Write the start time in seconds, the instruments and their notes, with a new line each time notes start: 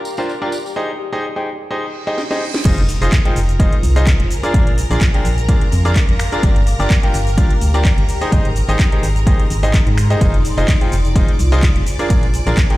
Already playing: ambient pad G4 D5 G5 A#5, string machine A#4 A#5
0.05 tambourine
0.17 grand piano D4 F4 G4 A#4 C5, tambourine
0.29 tambourine
0.42 grand piano D4 F4 G4 A#4 D5
0.52 tambourine
0.66 tambourine
0.76 grand piano D#4 G4 G#4 C5 D#5
1.13 grand piano D#4 G4 G#4 C5 D#5
1.36 grand piano D#4 G4 G#4 C5 G5
1.71 grand piano D#4 G4 G#4 C5 D#5, reverse cymbal
2.07 grand piano D#4 G4 G#4 C5 D#5
2.18 snare
2.31 grand piano D#4 G4 G#4 C5 D#5, snare
2.54 snare
2.65 fm bass F1, grand piano D#4 F4 G#4 C5 D#5, ambient pad F4, string machine A#4 A#5, kick, closed hi-hat, crash, impact, shaker
2.78 closed hi-hat
2.89 open hi-hat, shaker
3.01 fm bass F1, grand piano D#4 F4 G#4 C5 D#5, ambient pad C5, closed hi-hat, shaker
3.08 ambient pad G#5, kick
3.12 clap, closed hi-hat, shaker
3.25 grand piano D#4 F4 G#4 C5 G5, closed hi-hat
3.36 fm bass F1, open hi-hat, shaker
3.49 closed hi-hat, shaker
3.60 grand piano D#4 F4 G#4 C5 D#5, kick, closed hi-hat, shaker
3.73 closed hi-hat
3.83 fm bass C2, open hi-hat, shaker
3.96 grand piano D#4 F4 G#4 C5 D#5, closed hi-hat, shaker
4.07 kick, clap, closed hi-hat, shaker
4.20 fm bass F1, closed hi-hat
4.30 ambient pad A#4, open hi-hat, shaker
4.43 grand piano D4 F4 G#4 A#4 D5, closed hi-hat, shaker
4.54 fm bass A#1, grand piano D4 F4 G#4 A#4 D5, kick, closed hi-hat, shaker
4.67 closed hi-hat
4.78 open hi-hat, shaker
4.83 ambient pad F5
4.91 fm bass A#1, grand piano D4 F4 G#4 A#4 D5, closed hi-hat, shaker
4.99 ambient pad C6, kick, clap, closed hi-hat, shaker
5.14 grand piano D4 F4 G#4 A#4 G5, closed hi-hat
5.25 fm bass A#1, ambient pad D6, open hi-hat, shaker
5.38 closed hi-hat, shaker
5.49 grand piano D4 F4 G#4 A#4 D5, kick, closed hi-hat, shaker
5.61 closed hi-hat
5.72 fm bass F2, open hi-hat, shaker
5.85 grand piano D4 F4 G#4 A#4 D5, closed hi-hat, shaker
5.96 kick, clap, closed hi-hat, shaker
6.09 fm bass A#1, closed hi-hat
6.19 finger snap, open hi-hat, shaker
6.32 grand piano D4 F4 G#4 A#4 D5, closed hi-hat, shaker
6.43 fm bass G1, grand piano D4 F4 G4 A#4 D5, ambient pad G4, kick, closed hi-hat, shaker
6.56 closed hi-hat
6.65 ambient pad G5, open hi-hat, shaker
6.80 fm bass G1, grand piano D4 F4 G4 A#4 D5, closed hi-hat, shaker
6.89 ambient pad D5, kick, clap, closed hi-hat, shaker
7.03 grand piano D4 F4 G4 A#4 G5, closed hi-hat
7.14 fm bass G1, ambient pad A#5, open hi-hat, shaker
7.27 closed hi-hat, shaker
7.38 grand piano D4 F4 G4 A#4 D5, kick, closed hi-hat, shaker
7.50 closed hi-hat
7.61 fm bass D2, open hi-hat, shaker
7.74 grand piano D4 F4 G4 A#4 D5, closed hi-hat, shaker
7.85 kick, clap, closed hi-hat, shaker
7.98 fm bass G1, closed hi-hat
8.09 ambient pad G#4, open hi-hat, shaker
8.21 grand piano D#4 G4 G#4 C5 D#5, closed hi-hat, shaker
8.32 fm bass G#1, grand piano D#4 G4 G#4 C5 D#5, kick, closed hi-hat, shaker
8.38 ambient pad C6
8.45 closed hi-hat
8.56 ambient pad D#4, open hi-hat, shaker
8.68 fm bass G#1, grand piano D#4 G4 G#4 C5 D#5, closed hi-hat, shaker
8.79 kick, clap, closed hi-hat, shaker
8.92 grand piano D#4 G4 G#4 C5 G5, closed hi-hat
9.03 fm bass G#1, open hi-hat, shaker
9.16 closed hi-hat, shaker
9.27 grand piano D#4 G4 G#4 C5 D#5, kick, closed hi-hat, shaker
9.40 closed hi-hat
9.50 fm bass G#1, open hi-hat, shaker
9.63 grand piano D#4 G4 G#4 C5 D#5, closed hi-hat, shaker
9.74 kick, clap, closed hi-hat, shaker
9.87 fm bass G#2, closed hi-hat
9.98 finger snap, open hi-hat, shaker
10.10 grand piano D#4 G4 G#4 C5 D#5, closed hi-hat, shaker
10.21 fm bass F1, grand piano D#4 F4 G#4 C5 D#5, ambient pad F4, string machine D5 D6, kick, closed hi-hat, ride, shaker
10.34 closed hi-hat
10.45 open hi-hat, shaker
10.57 fm bass F1, grand piano D#4 F4 G#4 C5 D#5, closed hi-hat, shaker
10.68 kick, clap, closed hi-hat, ride, shaker
10.81 grand piano D#4 F4 G#4 C5 G5, closed hi-hat
10.92 fm bass F1, ambient pad C5 G#5, open hi-hat, shaker
11.05 closed hi-hat, shaker
11.16 grand piano D#4 F4 G#4 C5 D#5, kick, closed hi-hat, ride, shaker
11.28 closed hi-hat
11.39 fm bass C2, open hi-hat, shaker
11.52 grand piano D#4 F4 G#4 C5 D#5, closed hi-hat, shaker
11.63 kick, clap, closed hi-hat, ride, shaker
11.76 fm bass F1, closed hi-hat
11.86 ambient pad A#4, open hi-hat, shaker
11.99 grand piano D4 F4 G#4 A#4 D5, closed hi-hat, shaker
12.10 fm bass A#1, grand piano D4 G#4 D5, kick, closed hi-hat, ride, shaker
12.23 closed hi-hat
12.34 open hi-hat, shaker
12.38 ambient pad F5
12.47 fm bass A#1, grand piano D4 F4 G#4 A#4 D5, closed hi-hat, shaker
12.55 ambient pad C6, kick, clap, closed hi-hat, ride, shaker
12.70 grand piano D4 F4 G#4 A#4 G5, closed hi-hat